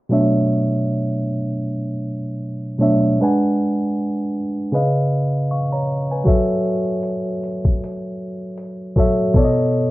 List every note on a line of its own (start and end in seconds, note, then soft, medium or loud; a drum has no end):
0.09 1.20 B2 medium
0.09 1.20 F#3 medium
0.09 1.21 A3 medium
0.09 1.21 D4 medium
0.09 1.22 C#5 medium
0.09 1.22 E5 medium
2.79 3.09 B2 medium
2.79 3.09 F#3 medium
2.79 3.10 A3 medium
2.79 3.10 D4 medium
2.79 3.10 C#5 medium
2.79 3.11 E5 medium
3.20 4.29 G#3 medium
3.20 4.30 D4 medium
3.20 4.30 B4 medium
3.20 4.30 F#5 medium
3.24 4.31 G#5 medium
4.72 5.68 C#3 medium
4.72 5.68 C#4 medium
4.72 5.50 B4 medium
4.72 5.51 D#5 medium
4.72 5.50 F5 medium
5.51 5.73 F5 medium
5.51 5.72 C#6 medium
5.72 6.10 C#5 medium
5.72 6.09 A#5 medium
6.11 6.48 B4 soft
6.11 6.48 G#5 medium
6.24 7.35 F#3 medium
6.24 7.36 F#4 medium
6.24 7.36 A4 medium
6.24 7.36 C#5 medium
6.24 7.37 E5 medium
6.24 kick loud
6.29 closed hi-hat medium
6.65 closed hi-hat soft
7.03 closed hi-hat medium
7.43 closed hi-hat soft
7.65 kick medium
7.84 closed hi-hat medium
8.58 closed hi-hat soft
8.96 9.25 F#3 medium
8.96 9.26 F#4 medium
8.96 9.26 A4 medium
8.96 9.27 C#5 medium
8.96 9.27 E5 medium
8.96 kick medium
9.34 9.91 B2 medium
9.34 9.91 B3 medium
9.34 9.91 A4 medium
9.34 9.91 C#5 medium
9.34 9.44 D5 medium
9.34 kick loud
9.34 closed hi-hat medium
9.45 9.91 D#5 loud
9.72 closed hi-hat soft